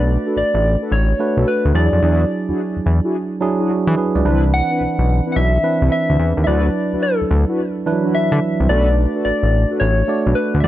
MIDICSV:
0, 0, Header, 1, 5, 480
1, 0, Start_track
1, 0, Tempo, 555556
1, 1751, Time_signature, 4, 2, 24, 8
1, 9224, End_track
2, 0, Start_track
2, 0, Title_t, "Soft synth lead"
2, 0, Program_c, 0, 80
2, 0, Note_on_c, 0, 74, 108
2, 314, Note_off_c, 0, 74, 0
2, 324, Note_on_c, 0, 74, 114
2, 797, Note_on_c, 0, 73, 99
2, 809, Note_off_c, 0, 74, 0
2, 1277, Note_on_c, 0, 71, 89
2, 1290, Note_off_c, 0, 73, 0
2, 1510, Note_off_c, 0, 71, 0
2, 1515, Note_on_c, 0, 74, 102
2, 2439, Note_off_c, 0, 74, 0
2, 3920, Note_on_c, 0, 78, 114
2, 4558, Note_off_c, 0, 78, 0
2, 4598, Note_on_c, 0, 78, 77
2, 4634, Note_on_c, 0, 76, 116
2, 4647, Note_off_c, 0, 78, 0
2, 5109, Note_off_c, 0, 76, 0
2, 5114, Note_on_c, 0, 76, 107
2, 5519, Note_off_c, 0, 76, 0
2, 5564, Note_on_c, 0, 76, 75
2, 5590, Note_on_c, 0, 74, 94
2, 5603, Note_off_c, 0, 76, 0
2, 6065, Note_off_c, 0, 74, 0
2, 6070, Note_on_c, 0, 69, 85
2, 6517, Note_off_c, 0, 69, 0
2, 7038, Note_on_c, 0, 76, 105
2, 7511, Note_on_c, 0, 74, 102
2, 7524, Note_off_c, 0, 76, 0
2, 7986, Note_off_c, 0, 74, 0
2, 7991, Note_on_c, 0, 74, 108
2, 8437, Note_off_c, 0, 74, 0
2, 8465, Note_on_c, 0, 73, 107
2, 8944, Note_on_c, 0, 71, 91
2, 8957, Note_off_c, 0, 73, 0
2, 9145, Note_off_c, 0, 71, 0
2, 9162, Note_on_c, 0, 76, 68
2, 9192, Note_on_c, 0, 74, 107
2, 9205, Note_off_c, 0, 76, 0
2, 9224, Note_off_c, 0, 74, 0
2, 9224, End_track
3, 0, Start_track
3, 0, Title_t, "Analog polysynth"
3, 0, Program_c, 1, 90
3, 226, Note_on_c, 1, 62, 77
3, 228, Note_on_c, 1, 66, 76
3, 229, Note_on_c, 1, 69, 71
3, 232, Note_on_c, 1, 71, 84
3, 330, Note_off_c, 1, 62, 0
3, 330, Note_off_c, 1, 66, 0
3, 331, Note_off_c, 1, 69, 0
3, 332, Note_off_c, 1, 71, 0
3, 704, Note_on_c, 1, 62, 79
3, 706, Note_on_c, 1, 66, 66
3, 709, Note_on_c, 1, 69, 73
3, 712, Note_on_c, 1, 71, 79
3, 809, Note_off_c, 1, 62, 0
3, 809, Note_off_c, 1, 66, 0
3, 811, Note_off_c, 1, 69, 0
3, 812, Note_off_c, 1, 71, 0
3, 1185, Note_on_c, 1, 62, 77
3, 1188, Note_on_c, 1, 66, 69
3, 1190, Note_on_c, 1, 69, 73
3, 1193, Note_on_c, 1, 71, 87
3, 1289, Note_off_c, 1, 62, 0
3, 1291, Note_off_c, 1, 66, 0
3, 1291, Note_off_c, 1, 69, 0
3, 1293, Note_off_c, 1, 71, 0
3, 1750, Note_on_c, 1, 62, 93
3, 1752, Note_on_c, 1, 64, 89
3, 1754, Note_on_c, 1, 66, 83
3, 1755, Note_on_c, 1, 68, 98
3, 1915, Note_off_c, 1, 62, 0
3, 1916, Note_off_c, 1, 64, 0
3, 1917, Note_off_c, 1, 66, 0
3, 1918, Note_off_c, 1, 68, 0
3, 2146, Note_on_c, 1, 62, 78
3, 2147, Note_on_c, 1, 64, 70
3, 2147, Note_on_c, 1, 66, 71
3, 2151, Note_on_c, 1, 68, 85
3, 2249, Note_off_c, 1, 62, 0
3, 2250, Note_off_c, 1, 64, 0
3, 2250, Note_off_c, 1, 66, 0
3, 2252, Note_off_c, 1, 68, 0
3, 2628, Note_on_c, 1, 62, 77
3, 2629, Note_on_c, 1, 64, 74
3, 2632, Note_on_c, 1, 66, 71
3, 2634, Note_on_c, 1, 68, 90
3, 2731, Note_off_c, 1, 62, 0
3, 2731, Note_off_c, 1, 64, 0
3, 2732, Note_off_c, 1, 66, 0
3, 2734, Note_off_c, 1, 68, 0
3, 3102, Note_on_c, 1, 62, 75
3, 3105, Note_on_c, 1, 64, 76
3, 3106, Note_on_c, 1, 66, 73
3, 3108, Note_on_c, 1, 68, 90
3, 3207, Note_off_c, 1, 62, 0
3, 3209, Note_off_c, 1, 64, 0
3, 3210, Note_off_c, 1, 66, 0
3, 3211, Note_off_c, 1, 68, 0
3, 3667, Note_on_c, 1, 60, 92
3, 3668, Note_on_c, 1, 62, 88
3, 3671, Note_on_c, 1, 64, 90
3, 3673, Note_on_c, 1, 71, 102
3, 3834, Note_off_c, 1, 60, 0
3, 3835, Note_off_c, 1, 62, 0
3, 3836, Note_off_c, 1, 64, 0
3, 3837, Note_off_c, 1, 71, 0
3, 4065, Note_on_c, 1, 60, 74
3, 4067, Note_on_c, 1, 62, 70
3, 4069, Note_on_c, 1, 64, 66
3, 4071, Note_on_c, 1, 71, 91
3, 4169, Note_off_c, 1, 60, 0
3, 4170, Note_off_c, 1, 62, 0
3, 4171, Note_off_c, 1, 64, 0
3, 4172, Note_off_c, 1, 71, 0
3, 4548, Note_on_c, 1, 60, 77
3, 4548, Note_on_c, 1, 62, 70
3, 4550, Note_on_c, 1, 64, 70
3, 4551, Note_on_c, 1, 71, 90
3, 4650, Note_off_c, 1, 62, 0
3, 4651, Note_off_c, 1, 60, 0
3, 4652, Note_off_c, 1, 64, 0
3, 4652, Note_off_c, 1, 71, 0
3, 5026, Note_on_c, 1, 60, 77
3, 5029, Note_on_c, 1, 62, 71
3, 5031, Note_on_c, 1, 64, 73
3, 5032, Note_on_c, 1, 71, 87
3, 5130, Note_off_c, 1, 60, 0
3, 5131, Note_off_c, 1, 62, 0
3, 5132, Note_off_c, 1, 64, 0
3, 5133, Note_off_c, 1, 71, 0
3, 5590, Note_on_c, 1, 62, 90
3, 5592, Note_on_c, 1, 64, 86
3, 5594, Note_on_c, 1, 66, 87
3, 5595, Note_on_c, 1, 71, 99
3, 5755, Note_off_c, 1, 62, 0
3, 5756, Note_off_c, 1, 64, 0
3, 5757, Note_off_c, 1, 66, 0
3, 5758, Note_off_c, 1, 71, 0
3, 5987, Note_on_c, 1, 62, 79
3, 5988, Note_on_c, 1, 64, 69
3, 5992, Note_on_c, 1, 66, 72
3, 5992, Note_on_c, 1, 71, 83
3, 6090, Note_off_c, 1, 62, 0
3, 6091, Note_off_c, 1, 64, 0
3, 6092, Note_off_c, 1, 66, 0
3, 6092, Note_off_c, 1, 71, 0
3, 6466, Note_on_c, 1, 62, 77
3, 6468, Note_on_c, 1, 64, 70
3, 6469, Note_on_c, 1, 66, 73
3, 6472, Note_on_c, 1, 71, 85
3, 6570, Note_off_c, 1, 62, 0
3, 6571, Note_off_c, 1, 64, 0
3, 6571, Note_off_c, 1, 66, 0
3, 6572, Note_off_c, 1, 71, 0
3, 6943, Note_on_c, 1, 62, 80
3, 6946, Note_on_c, 1, 64, 74
3, 6949, Note_on_c, 1, 66, 73
3, 6950, Note_on_c, 1, 71, 83
3, 7048, Note_off_c, 1, 62, 0
3, 7049, Note_off_c, 1, 64, 0
3, 7051, Note_off_c, 1, 66, 0
3, 7051, Note_off_c, 1, 71, 0
3, 7509, Note_on_c, 1, 62, 96
3, 7512, Note_on_c, 1, 66, 83
3, 7513, Note_on_c, 1, 69, 85
3, 7514, Note_on_c, 1, 71, 102
3, 7675, Note_off_c, 1, 62, 0
3, 7677, Note_off_c, 1, 66, 0
3, 7677, Note_off_c, 1, 69, 0
3, 7677, Note_off_c, 1, 71, 0
3, 7907, Note_on_c, 1, 62, 73
3, 7908, Note_on_c, 1, 66, 75
3, 7910, Note_on_c, 1, 69, 71
3, 7911, Note_on_c, 1, 71, 87
3, 8010, Note_off_c, 1, 62, 0
3, 8010, Note_off_c, 1, 66, 0
3, 8011, Note_off_c, 1, 69, 0
3, 8012, Note_off_c, 1, 71, 0
3, 8384, Note_on_c, 1, 62, 79
3, 8387, Note_on_c, 1, 66, 67
3, 8389, Note_on_c, 1, 69, 66
3, 8390, Note_on_c, 1, 71, 82
3, 8489, Note_off_c, 1, 62, 0
3, 8490, Note_off_c, 1, 66, 0
3, 8491, Note_off_c, 1, 69, 0
3, 8492, Note_off_c, 1, 71, 0
3, 8866, Note_on_c, 1, 62, 76
3, 8868, Note_on_c, 1, 66, 71
3, 8869, Note_on_c, 1, 69, 74
3, 8871, Note_on_c, 1, 71, 82
3, 8969, Note_off_c, 1, 62, 0
3, 8970, Note_off_c, 1, 66, 0
3, 8971, Note_off_c, 1, 69, 0
3, 8972, Note_off_c, 1, 71, 0
3, 9224, End_track
4, 0, Start_track
4, 0, Title_t, "Tine electric piano"
4, 0, Program_c, 2, 4
4, 0, Control_c, 2, 64, 127
4, 0, Note_on_c, 2, 57, 70
4, 0, Note_on_c, 2, 62, 60
4, 0, Note_on_c, 2, 66, 63
4, 0, Note_on_c, 2, 71, 78
4, 641, Note_off_c, 2, 57, 0
4, 642, Note_off_c, 2, 62, 0
4, 644, Note_off_c, 2, 66, 0
4, 646, Note_off_c, 2, 71, 0
4, 1031, Note_on_c, 2, 57, 71
4, 1033, Note_on_c, 2, 62, 66
4, 1037, Note_on_c, 2, 66, 66
4, 1041, Note_on_c, 2, 71, 80
4, 1502, Note_off_c, 2, 62, 0
4, 1509, Note_on_c, 2, 54, 80
4, 1511, Note_off_c, 2, 57, 0
4, 1513, Note_on_c, 2, 62, 64
4, 1514, Note_off_c, 2, 66, 0
4, 1516, Note_off_c, 2, 71, 0
4, 1517, Note_on_c, 2, 64, 73
4, 1518, Note_on_c, 2, 68, 83
4, 1521, Control_c, 2, 64, 0
4, 1691, Control_c, 2, 64, 127
4, 2320, Note_off_c, 2, 54, 0
4, 2322, Note_off_c, 2, 62, 0
4, 2324, Note_off_c, 2, 64, 0
4, 2325, Note_off_c, 2, 68, 0
4, 2944, Note_on_c, 2, 54, 94
4, 2946, Note_on_c, 2, 62, 80
4, 2950, Note_on_c, 2, 64, 75
4, 2955, Note_on_c, 2, 68, 98
4, 3188, Note_off_c, 2, 62, 0
4, 3190, Note_off_c, 2, 64, 0
4, 3193, Note_off_c, 2, 68, 0
4, 3193, Note_on_c, 2, 66, 68
4, 3198, Note_on_c, 2, 62, 56
4, 3339, Note_off_c, 2, 66, 0
4, 3342, Note_off_c, 2, 62, 0
4, 3347, Note_on_c, 2, 68, 67
4, 3352, Note_on_c, 2, 64, 61
4, 3428, Note_off_c, 2, 68, 0
4, 3430, Note_off_c, 2, 64, 0
4, 3433, Note_on_c, 2, 71, 71
4, 3439, Note_on_c, 2, 68, 60
4, 3573, Note_off_c, 2, 54, 0
4, 3579, Note_off_c, 2, 71, 0
4, 3582, Note_off_c, 2, 68, 0
4, 3588, Note_on_c, 2, 74, 66
4, 3594, Note_on_c, 2, 71, 52
4, 3667, Note_off_c, 2, 71, 0
4, 3667, Note_on_c, 2, 50, 69
4, 3671, Note_on_c, 2, 60, 73
4, 3672, Note_on_c, 2, 62, 82
4, 3677, Note_on_c, 2, 71, 95
4, 3682, Control_c, 2, 64, 0
4, 3723, Note_on_c, 2, 52, 84
4, 3741, Note_off_c, 2, 50, 0
4, 3815, Note_off_c, 2, 74, 0
4, 3844, Control_c, 2, 64, 127
4, 4481, Note_off_c, 2, 60, 0
4, 4482, Note_off_c, 2, 62, 0
4, 4484, Note_off_c, 2, 71, 0
4, 4508, Note_off_c, 2, 52, 0
4, 4864, Note_on_c, 2, 52, 70
4, 4867, Note_on_c, 2, 60, 69
4, 4870, Note_on_c, 2, 62, 66
4, 4874, Note_on_c, 2, 71, 79
4, 5493, Note_off_c, 2, 52, 0
4, 5494, Note_off_c, 2, 60, 0
4, 5496, Note_off_c, 2, 62, 0
4, 5498, Note_off_c, 2, 71, 0
4, 5585, Note_on_c, 2, 54, 67
4, 5589, Note_on_c, 2, 62, 62
4, 5592, Note_on_c, 2, 64, 64
4, 5594, Note_on_c, 2, 71, 78
4, 5601, Control_c, 2, 64, 0
4, 5775, Control_c, 2, 64, 127
4, 6398, Note_off_c, 2, 54, 0
4, 6401, Note_off_c, 2, 62, 0
4, 6402, Note_off_c, 2, 64, 0
4, 6403, Note_off_c, 2, 71, 0
4, 6790, Note_on_c, 2, 52, 71
4, 6792, Note_on_c, 2, 62, 82
4, 6798, Note_on_c, 2, 64, 84
4, 6801, Note_on_c, 2, 71, 96
4, 6847, Note_on_c, 2, 54, 84
4, 6863, Note_off_c, 2, 52, 0
4, 7417, Note_off_c, 2, 62, 0
4, 7420, Note_off_c, 2, 64, 0
4, 7421, Note_off_c, 2, 71, 0
4, 7444, Note_off_c, 2, 54, 0
4, 7508, Note_on_c, 2, 57, 69
4, 7512, Note_on_c, 2, 62, 66
4, 7514, Note_on_c, 2, 66, 63
4, 7520, Note_on_c, 2, 69, 60
4, 7523, Control_c, 2, 64, 0
4, 7576, Note_on_c, 2, 71, 73
4, 7588, Note_off_c, 2, 69, 0
4, 7692, Control_c, 2, 64, 127
4, 8320, Note_off_c, 2, 57, 0
4, 8322, Note_off_c, 2, 62, 0
4, 8323, Note_off_c, 2, 66, 0
4, 8354, Note_off_c, 2, 71, 0
4, 8708, Note_on_c, 2, 57, 79
4, 8713, Note_on_c, 2, 62, 66
4, 8715, Note_on_c, 2, 66, 71
4, 8719, Note_on_c, 2, 74, 79
4, 9186, Note_off_c, 2, 66, 0
4, 9187, Note_on_c, 2, 56, 76
4, 9188, Note_off_c, 2, 74, 0
4, 9190, Note_off_c, 2, 57, 0
4, 9192, Note_off_c, 2, 62, 0
4, 9192, Note_on_c, 2, 64, 66
4, 9196, Note_on_c, 2, 66, 67
4, 9198, Note_on_c, 2, 74, 81
4, 9203, Control_c, 2, 64, 0
4, 9224, Note_off_c, 2, 56, 0
4, 9224, Note_off_c, 2, 64, 0
4, 9224, Note_off_c, 2, 66, 0
4, 9224, Note_off_c, 2, 74, 0
4, 9224, End_track
5, 0, Start_track
5, 0, Title_t, "Analog synth bass"
5, 0, Program_c, 3, 38
5, 0, Note_on_c, 3, 35, 103
5, 151, Note_off_c, 3, 35, 0
5, 314, Note_on_c, 3, 33, 47
5, 375, Note_off_c, 3, 33, 0
5, 468, Note_on_c, 3, 33, 98
5, 661, Note_off_c, 3, 33, 0
5, 790, Note_on_c, 3, 33, 99
5, 984, Note_off_c, 3, 33, 0
5, 1183, Note_on_c, 3, 35, 91
5, 1253, Note_off_c, 3, 35, 0
5, 1427, Note_on_c, 3, 38, 100
5, 1495, Note_off_c, 3, 38, 0
5, 1509, Note_on_c, 3, 40, 110
5, 1635, Note_off_c, 3, 40, 0
5, 1664, Note_on_c, 3, 41, 86
5, 1733, Note_off_c, 3, 41, 0
5, 1749, Note_on_c, 3, 40, 108
5, 1944, Note_off_c, 3, 40, 0
5, 2149, Note_on_c, 3, 40, 51
5, 2182, Note_off_c, 3, 40, 0
5, 2389, Note_on_c, 3, 40, 52
5, 2422, Note_off_c, 3, 40, 0
5, 2471, Note_on_c, 3, 40, 100
5, 2596, Note_off_c, 3, 40, 0
5, 3346, Note_on_c, 3, 52, 101
5, 3415, Note_off_c, 3, 52, 0
5, 3587, Note_on_c, 3, 37, 81
5, 3655, Note_off_c, 3, 37, 0
5, 3672, Note_on_c, 3, 36, 101
5, 3990, Note_off_c, 3, 36, 0
5, 4150, Note_on_c, 3, 35, 48
5, 4212, Note_off_c, 3, 35, 0
5, 4308, Note_on_c, 3, 35, 100
5, 4501, Note_off_c, 3, 35, 0
5, 4630, Note_on_c, 3, 35, 90
5, 4824, Note_off_c, 3, 35, 0
5, 5026, Note_on_c, 3, 36, 92
5, 5094, Note_off_c, 3, 36, 0
5, 5266, Note_on_c, 3, 38, 90
5, 5335, Note_off_c, 3, 38, 0
5, 5351, Note_on_c, 3, 40, 90
5, 5476, Note_off_c, 3, 40, 0
5, 5505, Note_on_c, 3, 39, 87
5, 5574, Note_off_c, 3, 39, 0
5, 5591, Note_on_c, 3, 38, 106
5, 5785, Note_off_c, 3, 38, 0
5, 5987, Note_on_c, 3, 38, 47
5, 6021, Note_off_c, 3, 38, 0
5, 6230, Note_on_c, 3, 38, 53
5, 6263, Note_off_c, 3, 38, 0
5, 6312, Note_on_c, 3, 38, 101
5, 6436, Note_off_c, 3, 38, 0
5, 7188, Note_on_c, 3, 50, 100
5, 7256, Note_off_c, 3, 50, 0
5, 7430, Note_on_c, 3, 36, 87
5, 7497, Note_off_c, 3, 36, 0
5, 7514, Note_on_c, 3, 35, 101
5, 7831, Note_off_c, 3, 35, 0
5, 7993, Note_on_c, 3, 33, 50
5, 8054, Note_off_c, 3, 33, 0
5, 8146, Note_on_c, 3, 33, 91
5, 8339, Note_off_c, 3, 33, 0
5, 8474, Note_on_c, 3, 33, 102
5, 8666, Note_off_c, 3, 33, 0
5, 8867, Note_on_c, 3, 35, 99
5, 8936, Note_off_c, 3, 35, 0
5, 9109, Note_on_c, 3, 38, 98
5, 9177, Note_off_c, 3, 38, 0
5, 9192, Note_on_c, 3, 40, 109
5, 9224, Note_off_c, 3, 40, 0
5, 9224, End_track
0, 0, End_of_file